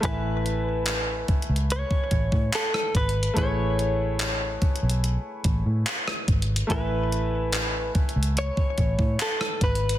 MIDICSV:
0, 0, Header, 1, 6, 480
1, 0, Start_track
1, 0, Key_signature, 3, "major"
1, 0, Tempo, 833333
1, 19, Time_signature, 4, 2, 24, 8
1, 5751, End_track
2, 0, Start_track
2, 0, Title_t, "Clean electric guitar"
2, 0, Program_c, 0, 27
2, 29, Note_on_c, 0, 71, 117
2, 721, Note_off_c, 0, 71, 0
2, 990, Note_on_c, 0, 73, 111
2, 1441, Note_off_c, 0, 73, 0
2, 1470, Note_on_c, 0, 69, 95
2, 1688, Note_off_c, 0, 69, 0
2, 1708, Note_on_c, 0, 71, 96
2, 1946, Note_off_c, 0, 71, 0
2, 1948, Note_on_c, 0, 73, 100
2, 3361, Note_off_c, 0, 73, 0
2, 3869, Note_on_c, 0, 71, 108
2, 4561, Note_off_c, 0, 71, 0
2, 4830, Note_on_c, 0, 73, 108
2, 5308, Note_off_c, 0, 73, 0
2, 5310, Note_on_c, 0, 69, 99
2, 5548, Note_off_c, 0, 69, 0
2, 5550, Note_on_c, 0, 71, 98
2, 5751, Note_off_c, 0, 71, 0
2, 5751, End_track
3, 0, Start_track
3, 0, Title_t, "Grand piano"
3, 0, Program_c, 1, 0
3, 0, Control_c, 1, 64, 127
3, 3, Note_on_c, 1, 57, 65
3, 13, Note_on_c, 1, 64, 62
3, 24, Note_on_c, 1, 80, 63
3, 45, Note_on_c, 1, 76, 76
3, 1908, Note_off_c, 1, 57, 0
3, 1913, Note_off_c, 1, 64, 0
3, 1918, Note_off_c, 1, 80, 0
3, 1922, Note_on_c, 1, 57, 68
3, 1929, Note_off_c, 1, 76, 0
3, 1933, Note_on_c, 1, 64, 60
3, 1944, Note_on_c, 1, 68, 66
3, 1954, Note_on_c, 1, 71, 60
3, 1965, Note_on_c, 1, 73, 73
3, 3827, Note_off_c, 1, 57, 0
3, 3833, Note_off_c, 1, 64, 0
3, 3838, Note_off_c, 1, 68, 0
3, 3842, Note_on_c, 1, 57, 67
3, 3844, Note_off_c, 1, 71, 0
3, 3849, Note_off_c, 1, 73, 0
3, 3853, Note_on_c, 1, 64, 62
3, 3863, Note_on_c, 1, 80, 60
3, 3874, Note_on_c, 1, 71, 60
3, 3885, Note_on_c, 1, 76, 78
3, 5747, Note_off_c, 1, 57, 0
3, 5751, Note_off_c, 1, 64, 0
3, 5751, Note_off_c, 1, 71, 0
3, 5751, Note_off_c, 1, 76, 0
3, 5751, Note_off_c, 1, 80, 0
3, 5751, End_track
4, 0, Start_track
4, 0, Title_t, "Fingered electric bass"
4, 0, Program_c, 2, 33
4, 20, Note_on_c, 2, 33, 102
4, 716, Note_off_c, 2, 33, 0
4, 860, Note_on_c, 2, 37, 90
4, 1052, Note_off_c, 2, 37, 0
4, 1218, Note_on_c, 2, 33, 90
4, 1314, Note_off_c, 2, 33, 0
4, 1338, Note_on_c, 2, 45, 98
4, 1434, Note_off_c, 2, 45, 0
4, 1698, Note_on_c, 2, 32, 84
4, 1891, Note_off_c, 2, 32, 0
4, 1939, Note_on_c, 2, 33, 107
4, 2636, Note_off_c, 2, 33, 0
4, 2781, Note_on_c, 2, 35, 93
4, 2972, Note_off_c, 2, 35, 0
4, 3138, Note_on_c, 2, 33, 99
4, 3234, Note_off_c, 2, 33, 0
4, 3259, Note_on_c, 2, 45, 99
4, 3355, Note_off_c, 2, 45, 0
4, 3619, Note_on_c, 2, 32, 94
4, 3811, Note_off_c, 2, 32, 0
4, 3859, Note_on_c, 2, 33, 104
4, 4556, Note_off_c, 2, 33, 0
4, 4700, Note_on_c, 2, 37, 94
4, 4892, Note_off_c, 2, 37, 0
4, 5058, Note_on_c, 2, 33, 98
4, 5154, Note_off_c, 2, 33, 0
4, 5177, Note_on_c, 2, 45, 95
4, 5274, Note_off_c, 2, 45, 0
4, 5538, Note_on_c, 2, 32, 85
4, 5730, Note_off_c, 2, 32, 0
4, 5751, End_track
5, 0, Start_track
5, 0, Title_t, "Muted fingered electric bass strokes"
5, 741, Note_on_c, 9, 29, 51
5, 799, Note_off_c, 9, 29, 0
5, 2661, Note_on_c, 9, 29, 49
5, 2719, Note_off_c, 9, 29, 0
5, 4580, Note_on_c, 9, 29, 52
5, 4638, Note_off_c, 9, 29, 0
5, 5751, End_track
6, 0, Start_track
6, 0, Title_t, "Drums"
6, 18, Note_on_c, 9, 42, 81
6, 19, Note_on_c, 9, 36, 116
6, 76, Note_off_c, 9, 42, 0
6, 77, Note_off_c, 9, 36, 0
6, 264, Note_on_c, 9, 42, 63
6, 321, Note_off_c, 9, 42, 0
6, 493, Note_on_c, 9, 42, 72
6, 500, Note_on_c, 9, 39, 114
6, 551, Note_off_c, 9, 42, 0
6, 558, Note_off_c, 9, 39, 0
6, 739, Note_on_c, 9, 42, 39
6, 741, Note_on_c, 9, 36, 105
6, 797, Note_off_c, 9, 42, 0
6, 798, Note_off_c, 9, 36, 0
6, 820, Note_on_c, 9, 42, 49
6, 878, Note_off_c, 9, 42, 0
6, 899, Note_on_c, 9, 42, 59
6, 957, Note_off_c, 9, 42, 0
6, 981, Note_on_c, 9, 42, 73
6, 1039, Note_off_c, 9, 42, 0
6, 1098, Note_on_c, 9, 36, 100
6, 1156, Note_off_c, 9, 36, 0
6, 1215, Note_on_c, 9, 42, 71
6, 1218, Note_on_c, 9, 36, 98
6, 1273, Note_off_c, 9, 42, 0
6, 1275, Note_off_c, 9, 36, 0
6, 1337, Note_on_c, 9, 36, 113
6, 1395, Note_off_c, 9, 36, 0
6, 1459, Note_on_c, 9, 39, 120
6, 1460, Note_on_c, 9, 42, 79
6, 1517, Note_off_c, 9, 39, 0
6, 1517, Note_off_c, 9, 42, 0
6, 1580, Note_on_c, 9, 37, 95
6, 1637, Note_off_c, 9, 37, 0
6, 1697, Note_on_c, 9, 46, 80
6, 1698, Note_on_c, 9, 36, 95
6, 1700, Note_on_c, 9, 42, 43
6, 1755, Note_off_c, 9, 36, 0
6, 1755, Note_off_c, 9, 46, 0
6, 1757, Note_off_c, 9, 42, 0
6, 1780, Note_on_c, 9, 42, 58
6, 1837, Note_off_c, 9, 42, 0
6, 1860, Note_on_c, 9, 42, 73
6, 1917, Note_off_c, 9, 42, 0
6, 1939, Note_on_c, 9, 36, 117
6, 1939, Note_on_c, 9, 42, 76
6, 1996, Note_off_c, 9, 36, 0
6, 1996, Note_off_c, 9, 42, 0
6, 2183, Note_on_c, 9, 42, 59
6, 2241, Note_off_c, 9, 42, 0
6, 2415, Note_on_c, 9, 42, 72
6, 2421, Note_on_c, 9, 39, 115
6, 2472, Note_off_c, 9, 42, 0
6, 2479, Note_off_c, 9, 39, 0
6, 2659, Note_on_c, 9, 42, 36
6, 2661, Note_on_c, 9, 36, 107
6, 2717, Note_off_c, 9, 42, 0
6, 2718, Note_off_c, 9, 36, 0
6, 2739, Note_on_c, 9, 42, 49
6, 2797, Note_off_c, 9, 42, 0
6, 2820, Note_on_c, 9, 42, 62
6, 2877, Note_off_c, 9, 42, 0
6, 2902, Note_on_c, 9, 42, 68
6, 2960, Note_off_c, 9, 42, 0
6, 3135, Note_on_c, 9, 42, 71
6, 3138, Note_on_c, 9, 36, 99
6, 3193, Note_off_c, 9, 42, 0
6, 3195, Note_off_c, 9, 36, 0
6, 3380, Note_on_c, 9, 39, 115
6, 3380, Note_on_c, 9, 42, 77
6, 3437, Note_off_c, 9, 39, 0
6, 3438, Note_off_c, 9, 42, 0
6, 3500, Note_on_c, 9, 37, 101
6, 3557, Note_off_c, 9, 37, 0
6, 3617, Note_on_c, 9, 46, 81
6, 3618, Note_on_c, 9, 36, 96
6, 3619, Note_on_c, 9, 42, 45
6, 3675, Note_off_c, 9, 36, 0
6, 3675, Note_off_c, 9, 46, 0
6, 3677, Note_off_c, 9, 42, 0
6, 3700, Note_on_c, 9, 42, 58
6, 3757, Note_off_c, 9, 42, 0
6, 3779, Note_on_c, 9, 42, 80
6, 3837, Note_off_c, 9, 42, 0
6, 3859, Note_on_c, 9, 36, 117
6, 3859, Note_on_c, 9, 42, 80
6, 3916, Note_off_c, 9, 36, 0
6, 3917, Note_off_c, 9, 42, 0
6, 4103, Note_on_c, 9, 42, 58
6, 4161, Note_off_c, 9, 42, 0
6, 4334, Note_on_c, 9, 42, 77
6, 4341, Note_on_c, 9, 39, 107
6, 4392, Note_off_c, 9, 42, 0
6, 4399, Note_off_c, 9, 39, 0
6, 4578, Note_on_c, 9, 42, 37
6, 4580, Note_on_c, 9, 36, 105
6, 4636, Note_off_c, 9, 42, 0
6, 4638, Note_off_c, 9, 36, 0
6, 4659, Note_on_c, 9, 42, 51
6, 4717, Note_off_c, 9, 42, 0
6, 4738, Note_on_c, 9, 42, 65
6, 4796, Note_off_c, 9, 42, 0
6, 4821, Note_on_c, 9, 42, 74
6, 4878, Note_off_c, 9, 42, 0
6, 4938, Note_on_c, 9, 36, 98
6, 4995, Note_off_c, 9, 36, 0
6, 5055, Note_on_c, 9, 42, 64
6, 5057, Note_on_c, 9, 36, 96
6, 5113, Note_off_c, 9, 42, 0
6, 5115, Note_off_c, 9, 36, 0
6, 5177, Note_on_c, 9, 36, 105
6, 5234, Note_off_c, 9, 36, 0
6, 5299, Note_on_c, 9, 39, 122
6, 5300, Note_on_c, 9, 42, 82
6, 5357, Note_off_c, 9, 39, 0
6, 5357, Note_off_c, 9, 42, 0
6, 5419, Note_on_c, 9, 37, 105
6, 5477, Note_off_c, 9, 37, 0
6, 5536, Note_on_c, 9, 46, 81
6, 5537, Note_on_c, 9, 36, 99
6, 5538, Note_on_c, 9, 42, 44
6, 5594, Note_off_c, 9, 46, 0
6, 5595, Note_off_c, 9, 36, 0
6, 5596, Note_off_c, 9, 42, 0
6, 5618, Note_on_c, 9, 42, 60
6, 5676, Note_off_c, 9, 42, 0
6, 5699, Note_on_c, 9, 42, 78
6, 5751, Note_off_c, 9, 42, 0
6, 5751, End_track
0, 0, End_of_file